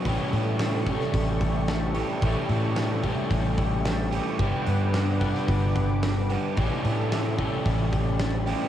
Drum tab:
HH |o-o-o-o-o-o-o-o-|o-o-o-o-o-o-o-o-|o-o-o-o-o-o-o-o-|o-o-o-o-o-o-o-o-|
SD |----o--o----o---|----o-------o---|----o--o----o---|----o-------o---|
BD |o-----o-o-o-----|o-----o-o-o-----|o-----o-o-o-----|o-----o-o-o-----|